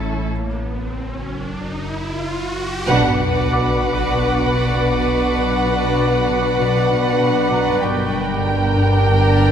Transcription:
Already playing: A1 A2 A3 C#4 E4 A4 C#5 E5 A5, riser
0.32 F#1
2.87 B1 B2 D4 F#4 B4 D5 F#5 B5 D6, sub drop
3.20 B3
3.51 B2 D6
3.82 B2
4.13 B2
4.45 B2
4.75 B2
5.05 B2
5.37 B2
5.68 B3
5.98 B2
6.29 B2
6.60 B2
6.92 B2
7.22 B2
7.52 B2 A#5
7.83 G1 G2 D4 G4 A#4 D5 G5 A#5
8.14 G3
8.47 G2
8.76 G2
9.07 G2
9.37 G2

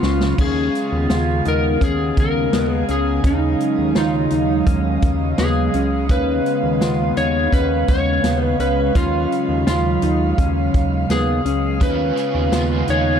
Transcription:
Already playing: C#3 F#3 G#3 F4 F5
0.03 C#2 C#4, snare
0.21 snare
0.38 D#2 C#3 G#3 B3 C#4 G#4 F5, kick, crash
0.61 F4
0.75 closed hi-hat
0.92 D#2
1.10 D#2 F4, snare, closed hi-hat
1.45 D#2 D#4 A#4, closed hi-hat
1.81 D#2 C#4 G#4, kick, closed hi-hat
2.17 D#2 A#4, kick, closed hi-hat
2.53 D#2 B3 G#4, snare, closed hi-hat
2.74 G#4
2.88 C#2 C#4 G#4, closed hi-hat
3.24 D#2 F#3 C#4 D#4, kick, closed hi-hat
3.60 closed hi-hat
3.78 D#2
3.95 D#2 D#4 F4, snare, closed hi-hat
4.30 D#2 D#4, closed hi-hat
4.67 D#2 C#4, kick, closed hi-hat
5.02 D#2, kick, closed hi-hat
5.38 D#2 B3 G#4, snare, closed hi-hat
5.74 C#2 C#4, closed hi-hat
6.09 D#2 C#3 B3 C#4 B4, kick, closed hi-hat
6.46 closed hi-hat
6.63 D#2
6.81 D#2 F4, snare, closed hi-hat
7.17 D#2 D#4 C#5, closed hi-hat
7.53 D#2 C#4 B4, kick, closed hi-hat
7.88 D#2 C#5, kick, closed hi-hat
8.24 D#2 B3, snare, closed hi-hat
8.43 B4
8.59 C#2 C#4 B4, closed hi-hat
8.95 D#2 C#3 F#3 C#4 F4, kick, closed hi-hat
9.32 closed hi-hat
9.49 D#2
9.67 D#2 F4, snare, closed hi-hat
10.02 D#2 D#4, closed hi-hat
10.38 D#2 C#4, kick, closed hi-hat
10.74 D#2, kick, closed hi-hat
11.09 D#2 B3 G#4, snare, closed hi-hat
11.45 C#2 C#4, closed hi-hat
11.80 D#2 D#3 G#3 B3 C#4 F4 G#4 B4, kick, closed hi-hat
12.16 C#4 F4 G#4, closed hi-hat
12.34 D#2
12.48 B4
12.52 D#2 B3 C#4 F4 G#4 D#5, snare, closed hi-hat
12.58 F5
12.87 D#2 C#4 D#4 F4 G#4 C#5, closed hi-hat

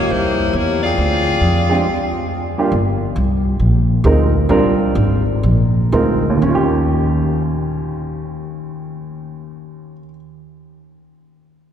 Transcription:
Already playing: A#3 F4 G4 C#5
0.10 C2 A#3 E4 G4 C5
0.53 E2 A#3 E4 G4 C#5
0.83 C4 F4 G#4 D5
0.98 D2
1.41 F2
1.69 G#3 C4 D4 F4 G4
2.58 G3 A#3 D4 F4 G4
2.72 G1
3.16 C2
3.60 A#1
4.04 D2 G#3 C4 D#4 F4 A#4
4.49 C2 G3 C4 D4 F4 A#4
4.95 G#1
5.43 A#1
5.92 D2 G#3 C4 D#4 F4 A#4
6.30 D#2
6.36 D#3
6.42 D#2 C#4
6.49 F4
6.55 G4

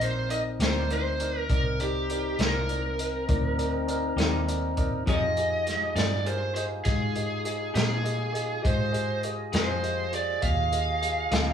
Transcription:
Already playing: A#1 C4 D#4 A#4
0.00 D#4 A#4 C5 D5, closed hi-hat
0.29 D#4 A#4 D5 D#5, closed hi-hat
0.59 D2 C3 A#3 D#4 G4 A#4 D5, snare, closed hi-hat
0.64 C5
0.90 D#4 A#4 C5 D5, closed hi-hat
1.20 D#4 A#4 D5, closed hi-hat
1.39 A#4
1.49 C2 C4 D#4 A#4 D5, kick, closed hi-hat
1.53 A#4
1.79 D#4 G4 A#4 D5, closed hi-hat
2.10 D#4 A#4 D5, closed hi-hat
2.39 C2 C3 A#3 D#4 G4 A#4 D5, snare, closed hi-hat
2.69 D#4 A#4 D5, closed hi-hat
2.99 D#4 A#4 D#5, closed hi-hat
3.27 D2 D#4 A#4 D5, kick, closed hi-hat
3.58 D#4 A#4 D5, closed hi-hat
3.87 D#4 A#4 D5, closed hi-hat
4.16 D#2 C3 A#3 D#4 G4 A#4 D5, snare, closed hi-hat
4.47 D#4 A#4 D5, closed hi-hat
4.76 D#4 A#4 D5, kick, closed hi-hat
5.06 F2 F3 C4 D#4 F4 G4 G#4 D#5, kick, closed hi-hat
5.37 G4 G#4 D#5, closed hi-hat
5.67 G4 G#4 D#5, snare, closed hi-hat
5.95 G2 F3 C4 D#4 G4 G#4 D5 D#5, snare, closed hi-hat
6.26 G4 G#4 A#4 C5, closed hi-hat
6.55 G4 G#4 C5 D#5, closed hi-hat
6.85 G#2 G4 G#4 D#5, kick, snare, closed hi-hat
7.15 G4 G#4 D#5, closed hi-hat
7.45 G4 G#4 D#5, closed hi-hat
7.74 A#2 F3 C4 D#4 G4 G#4 D#5, snare, closed hi-hat
8.04 G4 G#4 D#5, closed hi-hat
8.32 G4 G#4 D#5, closed hi-hat
8.62 G#2 G4 G#4 C5 D#5, kick, closed hi-hat
8.66 F4 G#4 D#5
8.92 G4 G#4 D#5, closed hi-hat
9.23 G4 G#4 D#5, closed hi-hat
9.52 F2 F3 C4 D#4 G4 G#4 C5 D#5, snare, closed hi-hat
9.83 G4 G#4 D#5, closed hi-hat
10.13 G4 G#4 C5 D5, closed hi-hat
10.41 D#2 G4 G#4 D#5 F5, kick, closed hi-hat
10.72 G4 G#4 D#5, closed hi-hat
11.01 G4 G#4 D#5, closed hi-hat
11.31 D2 F3 C4 D#4 G4 G#4 D#5, snare, closed hi-hat

